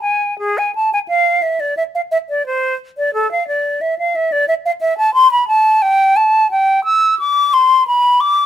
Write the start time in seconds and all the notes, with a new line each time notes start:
0.01 G#5
0.39 G#4
0.58 G#5
0.75 A5
0.93 G#5
1.08 F5
1.42 E5
1.60 D5
1.77 E5
1.95 F5
2.11 E5
2.29 D5
2.46 C5
2.98 D5
3.14 A4
3.31 F5
3.48 D5
3.81 E5
3.99 F5
4.15 E5
4.32 D5
4.48 E5
4.65 F5
4.81 E5
4.98 A5
5.14 C6
5.31 B5
5.48 A5
5.82 G5
6.16 A5
6.51 G5
6.84 E6
7.19 D6
7.53 C6
7.87 B5
8.20 D6